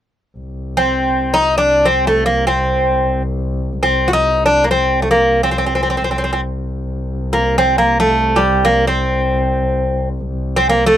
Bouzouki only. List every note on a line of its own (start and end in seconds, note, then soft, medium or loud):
0.77 1.36 C4 medium
1.34 1.57 D#4 medium
1.58 1.86 D4 medium
1.85 2.05 C4 medium
2.07 2.25 A3 medium
2.26 2.47 A#3 medium
2.47 3.22 C4 medium
3.83 4.08 C4 medium
4.08 4.13 F#4 medium
4.13 4.45 D#4 medium
4.46 4.64 D4 medium
4.64 4.71 A#3 medium
4.71 5.02 C4 medium
5.02 5.10 A3 soft
5.11 5.43 A#3 medium
5.43 5.50 C4 medium
5.51 5.57 C4 soft
5.58 5.65 C4 soft
5.66 5.73 C4 soft
5.75 5.81 C4 soft
5.83 5.89 C4 soft
5.90 5.96 C4 soft
5.97 6.03 C4 soft
6.04 6.10 C4 soft
6.11 6.17 C4 soft
6.18 6.23 C4 soft
6.24 6.32 C4 soft
6.33 6.40 C4 soft
7.33 7.57 A#3 medium
7.58 7.78 C4 medium
7.78 7.99 A#3 medium
8.00 8.38 A3 medium
8.36 8.67 G3 medium
8.65 8.87 A#3 medium
8.87 10.08 C4 medium
10.56 10.69 C4 medium
10.70 10.86 A#3 medium
10.86 10.97 A3 medium